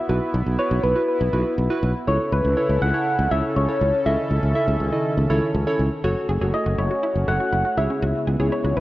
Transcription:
Already playing: analog synth pad B3 E4 F#4, soft synth lead E5
0.09 fretless electric bass B1, synth keys E4 F#4 B4
0.34 fretless electric bass B1
0.46 fretless electric bass B1
0.59 synth keys E4 F#4 B4, soft synth lead C#5
0.71 fretless electric bass B1
0.83 fretless electric bass B1, soft synth lead B4
0.96 synth keys E4 F#4 B4
1.08 soft synth lead B4
1.21 fretless electric bass B1
1.33 fretless electric bass B1, synth keys E4 F#4 B4
1.58 fretless electric bass B1
1.70 synth keys E4 F#4 B4
1.83 fretless electric bass B1
2.07 fretless electric bass C#2, analog synth pad C#3 C#4 E4 A4, synth keys E4 A4 C#5, soft synth lead C#5
2.32 fretless electric bass C#2, soft synth lead B4
2.45 fretless electric bass C#2
2.57 synth keys E4 A4 C#5
2.69 fretless electric bass C#2
2.82 fretless electric bass C#2, soft synth lead F#5
2.94 synth keys E4 A4 C#5
3.19 fretless electric bass C#2
3.31 fretless electric bass C#2, synth keys E4 A4 C#5, soft synth lead E5
3.56 fretless electric bass C#2, soft synth lead C#5
3.68 synth keys E4 A4 C#5
3.81 fretless electric bass C#2
4.06 fretless electric bass C#2, analog synth pad D#3, synth keys E4 A4 D#5, soft synth lead E5
4.31 fretless electric bass C#2
4.43 fretless electric bass C#2
4.55 synth keys E4 A4 E5, soft synth lead E5
4.68 fretless electric bass C#2
4.80 fretless electric bass C#2
4.92 synth keys E4 A4 D#5
5.17 fretless electric bass C#2
5.30 fretless electric bass C#2, synth keys E4 A4 C#5
5.54 fretless electric bass C#2
5.67 synth keys E4 A4 C#5
5.79 fretless electric bass C#2
6.04 fretless electric bass F#1, analog synth pad A3 C#4 F#4, synth keys F#4 A4 C#5, synth arpeggio sound F#4
6.29 fretless electric bass F#1, synth arpeggio sound G#4
6.41 fretless electric bass F#1, synth keys F#4 A4 C#5, synth arpeggio sound G#4
6.54 synth arpeggio sound E4, soft synth lead D#5
6.66 fretless electric bass F#1, synth arpeggio sound F#4
6.78 fretless electric bass F#1, synth arpeggio sound E4, soft synth lead C#5
6.91 synth arpeggio sound F#4
7.03 synth arpeggio sound E4
7.16 fretless electric bass F#1
7.28 fretless electric bass F#1, synth arpeggio sound E4, synth keys F#4 A4 C#5, soft synth lead F#5
7.40 synth arpeggio sound F#4
7.53 fretless electric bass F#1, synth arpeggio sound E4
7.65 synth arpeggio sound F#4
7.78 fretless electric bass C#2, analog synth pad C#3 G#3 B3 E4, synth arpeggio sound E4, synth keys E4 G#4 C#5, soft synth lead E5
7.90 synth arpeggio sound C#4
8.02 fretless electric bass C#2, synth arpeggio sound F#4
8.27 fretless electric bass C#2, synth arpeggio sound G#4
8.40 fretless electric bass C#2, synth keys E4 G#4 C#5, synth arpeggio sound G#4
8.52 synth arpeggio sound E4, soft synth lead C#5
8.64 fretless electric bass C#2, synth arpeggio sound F#4
8.77 fretless electric bass C#2, synth arpeggio sound E4, soft synth lead B4

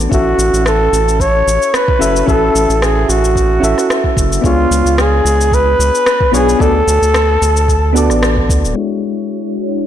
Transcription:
Already playing: synth keys B3 D4 F#4 A4 D5
0.00 cabasa
0.09 analog synth bass A1, synth keys C#4 E4 F#4 A4, kick, cabasa
0.13 flugelhorn F#4, synth keys E5
0.38 analog synth bass A1, cabasa
0.53 analog synth bass A1, cabasa
0.66 flugelhorn A4, cross-stick, cabasa
0.92 analog synth bass A1, cabasa
1.09 cabasa
1.20 flugelhorn C#5, kick, cabasa
1.47 analog synth bass A1, cabasa
1.62 cabasa
1.74 flugelhorn B4, cross-stick, cabasa
1.88 kick
1.99 analog synth bass F#1, synth keys C#4 E4 F#4 A4 E5, cabasa
2.16 cabasa
2.26 analog synth bass A1, synth keys C#4 E4 F#4 A4 E5, flugelhorn A4, kick, cabasa
2.55 analog synth bass A1, cabasa
2.69 analog synth bass A1, cabasa
2.82 flugelhorn G#4, cross-stick, cabasa
3.09 analog synth bass A1, flugelhorn F#4, cabasa
3.25 cabasa
3.36 kick, cabasa
3.60 analog synth bass A1, synth keys C#4 E4 F#4 A4
3.64 synth keys E5, cabasa
3.78 cross-stick, cabasa
3.90 cross-stick, cabasa
4.04 kick
4.17 analog synth bass F#1, kick, cabasa
4.32 cabasa
4.41 analog synth bass C#2, synth keys B3 D4 F4 G#4, flugelhorn F4, kick, cabasa
4.46 synth keys C#5
4.71 analog synth bass C#2, cabasa
4.85 analog synth bass C#2, cabasa
4.98 flugelhorn G#4, cross-stick, cabasa
5.25 analog synth bass C#2, cabasa
5.41 cabasa
5.52 flugelhorn B4, kick, cabasa
5.79 analog synth bass C#2, cabasa
5.95 cabasa
6.06 cross-stick, cabasa
6.21 kick
6.32 analog synth bass B1, synth keys B3 D4 F4 G#4 C#5, flugelhorn G#4, cabasa
6.49 cabasa
6.59 analog synth bass D2, synth keys B3 D4 F#4 A4 D5, flugelhorn A4, kick, cabasa
6.87 analog synth bass D2, cabasa
7.02 analog synth bass D2, cabasa
7.14 cross-stick, cabasa
7.42 analog synth bass D2, cabasa
7.57 cabasa
7.68 kick, cabasa
7.93 synth keys B3 D4 F#4 A4, cabasa
7.98 synth keys D5
8.10 analog synth bass A1, cross-stick, cabasa
8.23 cross-stick, cabasa
8.37 kick
8.49 analog synth bass D2, kick, cabasa
8.64 analog synth bass D1, cabasa
8.74 synth keys G#3 D4 E4 F#4, ambient pad G#3 D4 E4 F#4 C#5
9.04 cabasa
9.58 cabasa

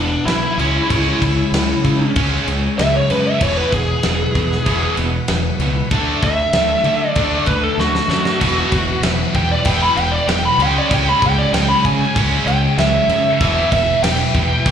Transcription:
Already playing: fingered electric bass E1, distorted electric guitar E2 B2, tonewheel organ E3 B3 F#5, lead electric guitar D4
0.26 fingered electric bass B1, distorted electric guitar E2 B2, lead electric guitar E4, snare, crash
0.58 fingered electric bass C#2, distorted electric guitar C#3 G#3 C#4, tonewheel organ C#4 G#4 C#5, crash
0.90 fingered electric bass C#2, distorted electric guitar C#3 G#3 C#4, kick, crash
1.22 fingered electric bass C#2, distorted electric guitar C#3 G#3, kick, crash
1.52 fingered electric bass C#2, distorted electric guitar C#3 G#3, snare, crash
1.84 fingered electric bass C#3, distorted electric guitar C#3 G#3, kick, crash
2.16 fingered electric bass C#2, distorted electric guitar C#3 G#3 C#4, kick, crash
2.47 fingered electric bass C#2, distorted electric guitar C#3 G#3, crash
2.79 fingered electric bass C#2, distorted electric guitar C#3 G#3, lead electric guitar E5, snare, crash
2.96 lead electric guitar C#5
3.10 fingered electric bass F#2, distorted electric guitar C#3 G#3, lead electric guitar B4, crash
3.27 lead electric guitar E5
3.40 fingered electric bass E1, distorted electric guitar E2 B2 E3, tonewheel organ E4 B4 F#5, lead electric guitar C#5, kick, crash
3.57 lead electric guitar B4
3.72 fingered electric bass E1, distorted electric guitar E2 B2, lead electric guitar G#4, kick, crash
4.03 fingered electric bass E1, distorted electric guitar E2 B2, snare, crash
4.35 distorted electric guitar E2 B2, fingered electric bass E2, kick, crash
4.52 snare
4.65 fingered electric bass E1, distorted electric guitar E2 B2 E3, kick, crash
4.97 fingered electric bass E1, distorted electric guitar E2 B2, crash
5.28 fingered electric bass E1, distorted electric guitar E2 B2, snare, crash
5.59 fingered electric bass C#2, distorted electric guitar E2 B2, crash
5.91 fingered electric bass D2, distorted electric guitar D3 A3 D4, tonewheel organ D4 A4 E5, kick, crash
6.22 fingered electric bass D2, distorted electric guitar D3 A3, lead electric guitar E5, kick, crash
6.53 fingered electric bass D2, distorted electric guitar D3 A3, snare, crash
6.84 fingered electric bass D3, distorted electric guitar D3 A3, crash
7.10 lead electric guitar D5
7.15 fingered electric bass D2, distorted electric guitar D3 A3 D4, kick, crash
7.46 fingered electric bass D2, distorted electric guitar D3 A3, lead electric guitar B4, kick, crash
7.63 lead electric guitar A4
7.78 fingered electric bass D2, distorted electric guitar D3 A3, lead electric guitar F#4, snare
7.95 snare
8.08 fingered electric bass F#2, distorted electric guitar D3 A3, snare
8.25 snare
8.41 fingered electric bass E1, distorted electric guitar E2 B2 E3, tonewheel organ E4 B4 F#5, kick, splash, crash
8.72 fingered electric bass E1, distorted electric guitar E2 B2, kick, snare, crash
9.02 fingered electric bass E1, distorted electric guitar E2 B2, snare, crash
9.34 distorted electric guitar E2 B2 E3, fingered electric bass E2, lead electric guitar G5, kick, crash
9.51 lead electric guitar D5
9.65 fingered electric bass E1, distorted electric guitar E2 B2 E3, lead electric guitar G5, kick, crash
9.82 lead electric guitar B5
9.96 fingered electric bass E1, distorted electric guitar E2 B2, lead electric guitar G5, crash
10.12 lead electric guitar D5
10.27 fingered electric bass E1, distorted electric guitar E2 B2, lead electric guitar G5, snare, crash
10.45 lead electric guitar B5
10.58 fingered electric bass C#2, distorted electric guitar C#3 G#3 C#4, tonewheel organ C#4 G#4 C#5, crash
10.62 lead electric guitar G5
10.78 lead electric guitar D5
10.90 fingered electric bass C#2, distorted electric guitar C#3 G#3 C#4, kick, crash
10.94 lead electric guitar G5
11.09 lead electric guitar B5
11.22 fingered electric bass C#2, distorted electric guitar C#3 G#3, lead electric guitar G5, kick, crash
11.38 lead electric guitar D5
11.53 fingered electric bass C#2, distorted electric guitar C#3 G#3 C#4, lead electric guitar G5, snare, crash
11.69 lead electric guitar B5
11.84 distorted electric guitar C#3 G#3, fingered electric bass C#3, lead electric guitar G#5, kick, crash
12.15 fingered electric bass C#2, distorted electric guitar C#3 G#3 C#4, kick, crash
12.46 fingered electric bass C#2, distorted electric guitar C#3 G#3, lead electric guitar G5, crash
12.78 fingered electric bass C#2, distorted electric guitar C#3 G#3, lead electric guitar E5, snare, crash
13.09 fingered electric bass F#2, distorted electric guitar C#3 G#3, crash
13.40 fingered electric bass E1, distorted electric guitar E2 B2 E3, tonewheel organ E4 B4 E5, kick, crash
13.71 fingered electric bass E1, distorted electric guitar E2 B2, lead electric guitar E5, kick, crash
14.02 fingered electric bass E1, distorted electric guitar E2 B2, lead electric guitar G5, snare, crash
14.34 fingered electric bass E2, distorted electric guitar E2 B2 E3, kick, crash
14.66 fingered electric bass E1, distorted electric guitar E2 B2 E3, kick, crash

